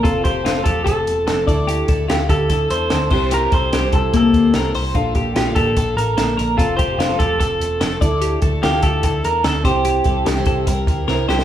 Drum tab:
CC |----------------|--------------x-|----------------|----------------|
HH |x-x-x-x-x-x-x-x-|x-x-x-x-x-x-x---|x-x-x-x-x-x-x-o-|x-x-x-x-x-x-x-x-|
SD |----o-------o---|----o-------o---|----o-------o---|----o-------o---|
BD |o-o---o-o-----o-|--o---o-o-----o-|--o---o-o-o-----|o-o---o-o-------|

CC |----------------|----------------|----------------|
HH |x-x-x-x-x-x-x-x-|x-x-x-x-x-x-x-x-|x-x-x-x-x-x-----|
SD |----o-------o---|----o-------o---|----o-------o-oo|
BD |o-o---o-o-----o-|--o---o-o-----o-|--o---o-o-o-----|